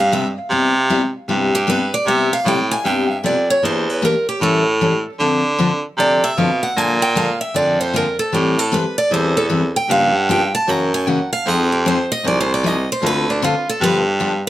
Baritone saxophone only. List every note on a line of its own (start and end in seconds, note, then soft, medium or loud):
0.00 0.35 G2 medium
0.50 1.13 C3 loud
1.29 1.91 G2 medium
2.06 2.38 C3 medium
2.45 2.79 A2 medium
2.84 3.18 G2 medium
3.23 3.57 F2 medium
3.63 4.06 E2 loud
4.41 5.04 A2 loud
5.20 5.83 D3 loud
5.98 6.31 C3 medium
6.37 6.70 B2 medium
6.76 7.39 A#2 loud
7.55 8.18 F2 medium
8.33 8.77 A2 medium
9.11 9.74 E2 medium
9.89 10.52 G2 loud
10.68 11.31 F#2 medium
11.46 12.09 F2 loud
12.24 12.87 C2 medium
13.02 13.46 D2 loud
13.81 14.44 G2 loud